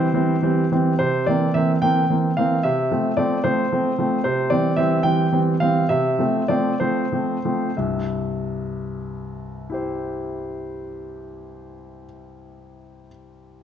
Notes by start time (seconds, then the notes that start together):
Already playing: E4 G4 C5
0.14 E3 G3 C4
0.43 E3 G3 C4
0.72 E3 G3 C4
0.99 C3 C5
1.26 E3 A#3 C4 D5
1.54 E3 A#3 C4 E5
1.82 E3 A#3 C4 G5
2.10 E3 A#3 C4
2.37 E3 A#3 C4 F5
2.63 C3 E5
2.91 F3 A3 C4
3.17 F3 A3 C4 D5
3.44 F3 A3 C4 C5
3.72 F3 A3 C4
3.99 F3 A3 C4
4.24 C3 C5
4.50 E3 G3 C4 D5
4.76 E3 G3 C4 E5
5.03 E3 G3 C4 G5
5.32 E3 G3 C4
5.60 E3 G3 C4 F5
5.89 C3 E5
6.19 F3 A3 C4
6.48 F3 A3 C4 D5
6.80 F3 A3 C4 C5
7.12 F3 A3 C4
7.45 F3 A3 C4
7.77 C2 G2 E5
9.70 E4 G4
9.74 C5